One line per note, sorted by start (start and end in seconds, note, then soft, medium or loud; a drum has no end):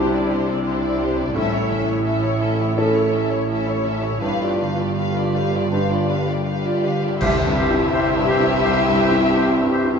0.00 1.31 C2 medium
0.00 1.32 C3 medium
0.00 1.38 C3 medium
0.00 0.98 G3 medium
0.00 0.12 D4 medium
0.00 0.29 D4 medium
0.00 1.31 D4 soft
0.00 0.63 E4 medium
0.00 1.31 E4 medium
0.00 0.12 G4 medium
0.00 1.31 G4 medium
0.00 0.12 C5 medium
0.13 0.30 D4 medium
0.13 0.30 E4 medium
0.13 0.31 D5 medium
0.28 1.38 D4 soft
0.28 0.48 D4 medium
0.28 0.47 G4 medium
0.28 0.47 C5 medium
0.46 0.64 D4 medium
0.46 0.65 E4 medium
0.46 0.65 D5 medium
0.63 0.81 D4 medium
0.63 2.04 E4 medium
0.63 0.80 G4 medium
0.63 0.81 C5 medium
0.80 0.99 D4 medium
0.80 1.00 E4 medium
0.80 1.00 D5 medium
0.99 1.38 G3 soft
0.99 1.17 D4 medium
0.99 1.17 G4 medium
0.99 1.17 C5 medium
1.16 1.35 D4 soft
1.16 1.35 E4 medium
1.16 1.35 D5 medium
1.33 4.19 A1 medium
1.33 2.76 A2 medium
1.33 4.19 A2 medium
1.33 1.51 C#4 medium
1.33 1.51 A4 medium
1.33 1.51 E5 medium
1.52 1.70 E4 medium
1.52 1.70 C#5 medium
1.69 2.40 E3 medium
1.69 1.88 C#4 medium
1.69 1.88 A4 soft
1.69 1.88 E5 medium
1.87 2.05 E4 medium
1.87 2.05 C#5 medium
2.04 2.22 C#4 medium
2.04 3.48 E4 medium
2.04 2.23 A4 soft
2.04 2.22 E5 medium
2.22 2.42 E4 medium
2.22 2.41 C#5 medium
2.22 2.42 C#5 medium
2.41 3.84 E3 soft
2.41 2.60 C#4 medium
2.41 2.60 A4 soft
2.41 2.60 E5 medium
2.58 2.77 E4 medium
2.58 2.77 C#5 medium
2.58 2.77 C#5 soft
2.76 4.26 A2 medium
2.76 2.93 C#4 medium
2.76 4.19 C#4 soft
2.76 4.19 E4 soft
2.76 2.94 A4 medium
2.76 4.19 A4 medium
2.76 2.94 E5 medium
2.94 3.13 E4 medium
2.94 3.13 C#5 medium
2.94 3.13 C#5 soft
3.12 3.31 C#4 soft
3.12 3.32 A4 medium
3.12 3.31 E5 soft
3.30 3.49 E4 soft
3.30 3.50 C#5 medium
3.30 3.50 C#5 soft
3.48 3.66 C#4 medium
3.48 4.26 E4 medium
3.48 3.66 A4 medium
3.48 3.66 E5 medium
3.66 3.85 E4 soft
3.66 3.86 C#5 medium
3.85 4.26 E3 soft
3.85 4.04 C#4 soft
3.85 4.05 A4 medium
3.85 4.05 E5 medium
4.03 4.23 E4 medium
4.03 4.23 C#5 soft
4.21 7.01 G1 medium
4.21 7.17 G2 medium
4.21 5.71 G2 medium
4.21 7.01 G2 medium
4.21 4.40 G4 soft
4.21 4.40 B4 medium
4.21 4.40 F5 medium
4.41 4.60 F4 soft
4.41 4.61 G4 soft
4.41 4.61 D5 soft
4.59 5.34 D3 soft
4.59 4.79 G4 medium
4.59 4.79 B4 soft
4.59 4.79 F5 soft
4.77 4.97 F4 soft
4.77 4.97 G4 medium
4.77 4.97 D5 soft
4.96 6.46 F4 medium
4.96 5.14 G4 medium
4.96 5.15 B4 soft
4.96 5.15 F5 medium
5.15 5.34 F4 soft
5.15 5.35 G4 soft
5.15 5.35 D5 soft
5.33 6.84 D3 soft
5.33 5.53 G4 medium
5.33 5.54 B4 soft
5.33 5.53 F5 soft
5.53 5.72 F4 soft
5.53 5.72 G4 soft
5.53 5.72 D5 soft
5.71 7.25 G2 medium
5.71 7.17 D4 soft
5.71 7.17 F4 soft
5.71 5.89 G4 soft
5.71 5.89 B4 soft
5.71 7.18 B4 soft
5.71 5.89 F5 soft
5.90 6.09 F4 soft
5.90 6.10 G4 soft
5.90 6.10 D5 soft
6.09 7.24 D4 soft
6.09 6.28 G4 soft
6.09 6.28 B4 medium
6.09 6.28 F5 medium
6.27 6.46 F4 soft
6.27 6.47 G4 soft
6.27 6.47 D5 soft
6.45 7.25 F4 medium
6.45 6.63 G4 soft
6.45 6.64 B4 soft
6.45 6.64 F5 soft
6.64 6.84 F4 soft
6.64 6.85 G4 medium
6.64 6.84 D5 soft
6.83 7.25 D3 soft
6.83 7.02 G4 soft
6.83 7.03 B4 medium
6.83 7.03 F5 soft
7.02 7.21 F4 medium
7.02 7.22 G4 soft
7.02 7.22 D5 soft
7.20 9.99 C2 medium
7.20 8.61 C2 medium
7.20 8.25 C3 loud
7.20 9.99 C3 medium
7.20 9.99 G3 medium
7.20 9.99 E4 medium
7.20 7.36 G4 medium
7.20 9.99 G4 medium
7.20 7.37 C5 medium
7.20 7.29 E5 medium
7.20 9.99 E5 medium
7.20 concert bass drum medium
7.20 crash medium
7.40 8.47 C4 medium
7.46 7.84 G2 medium
7.56 7.74 G4 medium
7.56 8.28 G4 medium
7.56 7.74 C5 medium
7.56 7.64 E5 medium
7.70 8.08 E4 medium
7.76 8.10 E5 medium
7.92 8.31 C4 medium
7.92 8.08 G4 medium
7.92 8.09 C5 medium
7.92 8.00 E5 medium
7.92 9.35 G5 medium
8.12 9.18 E5 medium
8.17 8.55 G2 medium
8.27 8.43 G4 medium
8.27 9.00 G4 medium
8.27 8.46 C5 medium
8.27 8.37 E5 medium
8.40 8.79 E4 soft
8.48 8.82 C4 medium
8.63 9.99 C2 medium
8.63 9.99 G3 medium
8.63 8.79 G4 medium
8.63 8.81 C5 medium
8.63 8.72 E5 medium
8.83 9.89 C4 medium
8.88 9.27 G2 medium
8.99 9.15 G4 medium
8.99 9.71 G4 medium
8.99 9.17 C5 medium
8.99 9.07 E5 medium
9.12 9.50 E4 soft
9.19 9.54 E5 medium
9.34 9.74 C4 medium
9.34 9.50 G4 medium
9.34 9.53 C5 medium
9.34 9.43 E5 medium
9.34 9.99 G5 medium
9.55 9.99 E5 medium
9.61 9.98 G2 soft
9.70 9.86 G4 medium
9.70 9.99 G4 medium
9.70 9.89 C5 medium
9.70 9.80 E5 medium
9.84 9.99 E4 medium
9.90 9.99 C4 medium